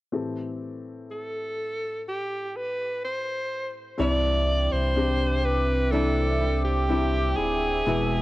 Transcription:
0.12 A2 E3 C4 G4 A4
1.11 A4
2.08 G4
2.56 B4
3.05 C5
3.98 C2 G2 C3 E3 G3 C4 D4 E4 D5 E5 G5 D6
4.02 E4
4.72 C2 C5
4.96 C4 D4 G4
5.45 B4
5.92 C3 E3 G3 C4 D4 E4 A4 G5
6.41 G3 D4 E4
6.65 G4
6.89 E3 G3 C4 D4 E4
7.36 D1 D4 E4 G#4
7.86 E1 E2 B2 E3 G#3 B3 E4 B4 G#5 E6

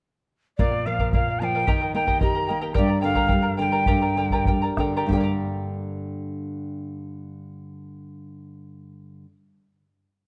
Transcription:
0.58 A#2 A#4 D5 F5, bombo low
0.72 D5 F5
0.86 F3 A#4 D5 F5
0.99 A#4 D5 F5, bombo low
1.12 A#3 A#4 D5 F5, bombo low
1.28 D5 F5
1.40 F3 A#4 D5 F5 A#5
1.44 G5
1.55 A#4 D5 F5
1.67 D#3 G4 A#4 D#5 G5 A#5, bombo low
1.81 A#4 D#5 A#5
1.95 A#3 A#4 D#5 G5 A#5
2.07 G4 A#4 D#5 G5 A#5, bombo low
2.19 G4 A#4 D#5 G5 A#5, bombo low
2.35 A#4 D#5 A#5
2.47 A#3 A#4 D#5 G5 A#5
2.61 G4 A#4 D#5 G5 A#5
2.74 G4 A#4 D5 G5 A#5, bombo low
2.78 G2
2.87 A#4 D5 A#5
3.01 D3 A#4 D5 F5 G5 A#5
3.15 G4 A#4 D5 G5 A#5, bombo low
3.28 A#4 D5 G5 A#5, bombo low
3.32 G3
3.42 A#4 D5 A#5
3.57 D3 A#4 D5 G5 A#5
3.72 G4 A#4 D5 G5 A#5
3.86 G2 G4 A#4 D5 G5 A#5, bombo low
4.01 A#4 D5 A#5
4.17 D3 A#4 D5 G5 A#5
4.30 G4 A#4 D5 G5 A#5, bombo low
4.45 G3 A#4 D5 G5 A#5, bombo low
4.62 A#4 D5 A#5
4.77 D3 A#4 D5 G5 A#5, bombo rim, bombo low
4.97 G4 A#4 D5 G5 A#5
5.07 G2 D3 A#3 G4, bombo low
5.12 G4 D5 G5
5.17 A#4 D5
5.24 A#5

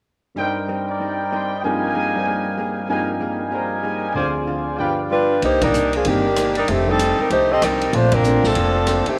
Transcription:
0.35 G2 G3 C4 D#4 A#4 C5 D5 D#5 G5
0.39 D#4 A#4
0.68 G3 C4 D#4 A#4
0.88 A#4 D5
0.99 G3 C4 D#4 A#4
1.22 A#5
1.32 G3 C4 D#4 A#4 C6
1.43 D6
1.53 D#6
1.63 G2 F3 G3 A#3 C4 D#4 G#4 A#4 D#5 F5 G5 G#5
1.94 G3 A#3 D#4 G#4
2.15 G3 F4 A#4 C5 D5
2.25 G3 A#3 D#4 G#4
2.58 G3 A#3 D#4 G#4
2.88 G2 F3 G3 A#3 C4 D#4 G#4 A#4 D#5 F5 G5 G#5
3.20 G3 A#3 D#4 G#4
3.51 G3 A#3 D#4 F4 G#4 A#4 C5 D5 F5 G5 A#5
3.83 G3 A#3 D#4 G#4
4.14 D2 D3 F3 C4 F4 G#4 C5 D5 F5 G#5
4.19 C4 G#4
4.47 D3 C4 F4 G#4
4.78 G2 D3 F3 G3 B3 D4 F4 G4 B4 D5 F5 G5
5.11 G3 D4 F4 B4
5.42 C2 C3 D#3 A#3 D4 D#4 G4 C5, ride
5.61 D#3 G3 A#3 D4 D#4 A#4, kick, ride
5.74 C3 D#3 A#3 D4, hi-hat pedal
5.93 F3 A#3 D4 G#4, ride
6.04 G1 C3 D#3 G3 A#3 C4 D4 G4, ride
6.36 C3 D#3 A#3 D4, cross-stick, hi-hat pedal, ride
6.55 G3 D4 D#4 A#4, ride
6.68 F1 F2 D#3 A3 C4 D4 G4, ride
6.87 D#3 G3 A3 C4 D4 D#4 A4
6.98 F2 D#3 A3 D4, hi-hat pedal, ride
7.19 G3 C4 D#4 A#4, muted upright bass stroke
7.30 C2 F2 D#3 A3 D4 D#4 G4 C5, ride
7.52 C4 G4 A4 D#5
7.62 C2 F2 D#3 G3 A3 C4 D4 D#4 A#4, cross-stick, hi-hat pedal, ride
7.81 ride
7.92 A#1 F3 A3 A#3 C4 D4 F4 A4 C5, ride
8.12 F3 C4 D4 A#4, kick, ride
8.23 F3 A3 A#3 C4 D4 A4 C5, hi-hat pedal
8.43 A1 F3 C4 D4 A4, snare
8.55 F1 A#3 D4 A4 C5, ride
8.87 A#3 D4 A4 C5, cross-stick, hi-hat pedal, ride
9.06 D#3 A3 C4 G4, muted upright bass stroke, ride

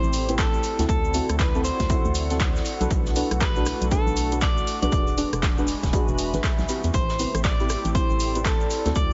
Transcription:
Already playing: A3 C4 E4 G4 A4 C5 D5 G5
0.03 A1, shaker
0.13 closed hi-hat, open hi-hat, shaker
0.29 C4 E4 G4 B4, closed hi-hat, shaker
0.38 A4, kick, snare, clap, closed hi-hat, shaker
0.54 shaker
0.63 C4 E4 F#4, closed hi-hat, open hi-hat, shaker
0.79 D2 C4 E4 F#4 A4, snare, closed hi-hat, shaker
0.89 D2 A4, kick, closed hi-hat, shaker
0.96 F#5
1.05 shaker
1.14 C4 E4 F#4 A4, closed hi-hat, open hi-hat, shaker
1.29 D2, cross-stick, closed hi-hat, shaker
1.39 B4, kick, snare, clap, closed hi-hat, shaker
1.55 C4 E4 F#4 A4, shaker
1.64 C5, closed hi-hat, open hi-hat, shaker
1.80 D2, kick, snare, closed hi-hat, shaker
1.90 C4 E4 F#4 A4, kick, closed hi-hat, shaker
2.05 D2, shaker
2.15 closed hi-hat, open hi-hat, shaker
2.30 C4 E4 F#4 A4, snare, closed hi-hat, shaker
2.40 kick, snare, clap, closed hi-hat, shaker
2.56 snare, shaker
2.65 A3 D4, closed hi-hat, open hi-hat, shaker
2.80 B1 D4 F#4 A4 B4, closed hi-hat, shaker
2.90 B1, kick, closed hi-hat, shaker
3.05 snare, shaker
3.15 D4 F#4 A4 B4, closed hi-hat, open hi-hat, shaker
3.31 B1, cross-stick, closed hi-hat, shaker
3.41 B4, kick, snare, clap, closed hi-hat, shaker
3.56 D4 F#4 A4 B4, closed hi-hat, shaker
3.66 cross-stick, closed hi-hat, open hi-hat, shaker
3.81 B1, closed hi-hat, shaker
3.91 D4 F#4 A4 B4, kick, closed hi-hat, shaker
4.07 B1, shaker
4.16 closed hi-hat, open hi-hat, shaker
4.32 D4 F#4 A4 B4, closed hi-hat, shaker
4.41 D5, kick, snare, clap, closed hi-hat, shaker
4.57 shaker
4.67 open hi-hat, shaker
4.82 B1 D4 F#4 G#4 B4 D5, closed hi-hat, shaker
4.92 E1 G#3 F#4, kick, closed hi-hat, shaker
5.07 B5, closed hi-hat, shaker
5.12 G#5
5.17 D4 F#4 G#4 B4, closed hi-hat, open hi-hat, shaker
5.33 E1, cross-stick, closed hi-hat, shaker
5.42 kick, snare, clap, closed hi-hat, shaker
5.51 E5
5.58 D4 F#4 G#4 B4, shaker
5.67 closed hi-hat, open hi-hat, shaker
5.83 E1, kick, snare, closed hi-hat, shaker
5.93 D4 F#4 G#4 B4, kick, closed hi-hat, shaker
6.08 E1, shaker
6.18 closed hi-hat, open hi-hat, shaker
6.33 G#1 D4 F#4 G#4 B4, snare, closed hi-hat, shaker
6.44 kick, snare, clap, closed hi-hat, shaker
6.58 B1, snare, shaker
6.69 C4 E4 G4 B4, closed hi-hat, open hi-hat, shaker
6.84 E2, closed hi-hat, shaker
6.94 A1 A3 C4 E4 G4 C5, kick, closed hi-hat, shaker
7.09 snare, shaker
7.19 C4 E4 G4 B4, closed hi-hat, open hi-hat, shaker
7.28 A4 D5
7.34 A1, cross-stick, closed hi-hat, shaker
7.44 D5, kick, snare, clap, closed hi-hat, shaker
7.58 C4 E4 G4 B4 G5, closed hi-hat, shaker
7.69 cross-stick, closed hi-hat, open hi-hat, shaker
7.85 A1, closed hi-hat, shaker
7.95 C4 E4 G4 C5, kick, closed hi-hat, shaker
8.10 A1, shaker
8.20 closed hi-hat, open hi-hat, shaker
8.35 C4 E4 G4 B4, closed hi-hat, shaker
8.44 A4, kick, snare, clap, closed hi-hat, shaker
8.60 shaker
8.70 E4 F#4, closed hi-hat, open hi-hat, shaker
8.86 D2 C4 E4 F#4 A4, snare, closed hi-hat, shaker
8.95 D2 D5, kick, closed hi-hat, shaker

